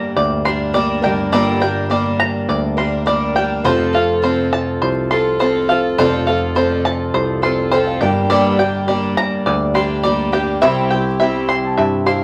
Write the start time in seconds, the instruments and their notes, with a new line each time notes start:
Already playing: grand piano G1 G2 G3 A#3 D4 A#4 D5 G5, twelve-string acoustic guitar G3 A#3 D4 A#4, five-string banjo D5 G5 A#5
0.16 picked electric bass D2, five-string banjo D5
0.45 twelve-string acoustic guitar G3 A#3 D4 A#4, five-string banjo C6
0.73 twelve-string acoustic guitar G3 A#3 D4 A#4, five-string banjo D5
1.02 grand piano G1 G2 G3 A#3 D4 A#4 D5, twelve-string acoustic guitar G3 A#3 D4 A#4, five-string banjo G5
1.32 picked electric bass G1, twelve-string acoustic guitar G2 D3 G3 A#3 D4 A#4, five-string banjo D5
1.60 twelve-string acoustic guitar G3 A#3 D4 A#4, five-string banjo G5
1.90 twelve-string acoustic guitar G3 A#3 D4 A#4, five-string banjo D5
2.20 five-string banjo A#5
2.49 picked electric bass D2, five-string banjo D5
2.77 twelve-string acoustic guitar G3 A#3 D4 A#4, five-string banjo C6
3.06 twelve-string acoustic guitar G3 A#3 D4 A#4, five-string banjo D5
3.35 twelve-string acoustic guitar G3 A#3 D4 A#4, five-string banjo G5
3.64 grand piano F1 F2 F3 A3 C4 A4 C5, picked electric bass F1, twelve-string acoustic guitar F3 C4 F4 A4, five-string banjo C5
3.93 twelve-string acoustic guitar C4 F4 A4, five-string banjo F5
4.22 twelve-string acoustic guitar F3 C4 F4 A4, five-string banjo C5
4.53 five-string banjo A5
4.82 picked electric bass C2, five-string banjo C5
5.11 twelve-string acoustic guitar C4 F4 A4, five-string banjo C6
5.39 twelve-string acoustic guitar F3 C4 F4 A4, five-string banjo C5
5.69 twelve-string acoustic guitar C4 F4 A4, five-string banjo F5
5.98 picked electric bass F1, grand piano F1 F2 F3 A3 C4 A4 D5, twelve-string acoustic guitar F3 C4 F4 A4, five-string banjo C5
6.27 twelve-string acoustic guitar C4 F4 A4, five-string banjo F5
6.55 twelve-string acoustic guitar F3 C4 F4 A4, five-string banjo C5
6.85 five-string banjo A5
7.14 picked electric bass C2, five-string banjo C5
7.42 twelve-string acoustic guitar C4 F4 A4, five-string banjo C6
7.71 twelve-string acoustic guitar F3 C4 F4 A4, five-string banjo C5, grand piano G5
7.87 grand piano F5
8.01 picked electric bass G1, grand piano G1 G2 G3 A#3 D4 A#4 D5, twelve-string acoustic guitar G3 A#3 D4 G4, five-string banjo G5
8.30 twelve-string acoustic guitar G2 D3 G3 A#3 D4 G4, five-string banjo D5
8.59 twelve-string acoustic guitar G3 A#3 D4 G4, five-string banjo G5
8.88 twelve-string acoustic guitar G3 A#3 D4 G4, five-string banjo D5
9.17 five-string banjo A#5
9.46 picked electric bass D2, five-string banjo D5
9.74 twelve-string acoustic guitar G3 A#3 D4 G4, five-string banjo C6
10.03 twelve-string acoustic guitar G3 A#3 D4 G4, five-string banjo D5
10.32 twelve-string acoustic guitar G3 A#3 D4 G4, five-string banjo G5
10.61 grand piano C2 C3 G3 C4 E4 C5 E5, picked electric bass C2, twelve-string acoustic guitar C3 G3 C4 E4 G4, five-string banjo E5
10.90 twelve-string acoustic guitar C4 E4 G4, five-string banjo G5
11.19 twelve-string acoustic guitar G3 C4 E4 G4, five-string banjo E5
11.49 grand piano G5, five-string banjo C6
11.64 grand piano A5
11.77 picked electric bass G2, five-string banjo E5, grand piano G5
12.06 twelve-string acoustic guitar C4 E4 G4, grand piano F5, five-string banjo C6